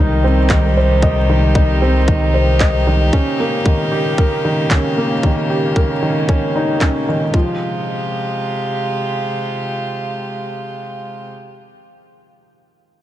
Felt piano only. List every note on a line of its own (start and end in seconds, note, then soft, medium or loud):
0.00 0.51 D#3 medium
0.00 0.23 D#4 medium
0.00 0.77 C5 medium
0.00 1.03 D#5 medium
0.24 0.39 C4 medium
0.51 0.75 D#3 medium
0.77 1.02 C5 medium
1.03 1.18 D#5 medium
1.29 1.54 D#3 medium
1.56 1.80 D#4 medium
1.82 1.97 C4 medium
2.08 2.33 D#3 medium
2.34 2.59 C5 medium
2.61 2.75 D#5 medium
2.87 3.12 D#3 medium
3.13 3.38 C#4 medium
3.40 3.55 A#3 medium
3.65 3.91 D#3 medium
3.92 4.17 G4 medium
4.18 4.33 A#4 medium
4.45 4.70 D#3 medium
4.71 4.96 C#4 medium
4.97 5.12 A#3 medium
5.24 5.49 D#3 medium
5.50 5.75 G4 medium
5.76 5.91 A#4 medium
6.02 6.27 D#3 medium
6.29 6.54 C#4 medium
6.56 6.80 D#4 medium
6.82 7.07 C#4 medium
7.09 7.23 D#3 medium
7.35 7.59 F3 medium